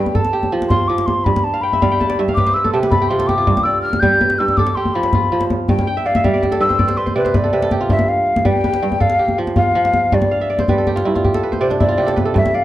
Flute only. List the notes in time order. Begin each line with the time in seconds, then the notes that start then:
Already playing: G5
0.15 A5
0.69 C6
0.88 D6
1.06 C6
1.24 B5
1.44 A5
1.61 B5
2.35 D6
2.54 E6
2.73 A5
2.91 B5
3.09 C6
3.27 D6
3.63 E6
3.82 F6
4.00 G6
4.39 E6
4.57 D6
4.75 C6
4.94 B5
5.68 G5
6.06 F5
6.25 E5
6.61 E6
6.97 C6
7.17 B4
7.36 D5
7.91 E5
8.09 F5
8.46 G5
9.01 F5
9.57 F5
10.14 D5
11.62 C5
11.81 D5
12.37 E5
12.55 F5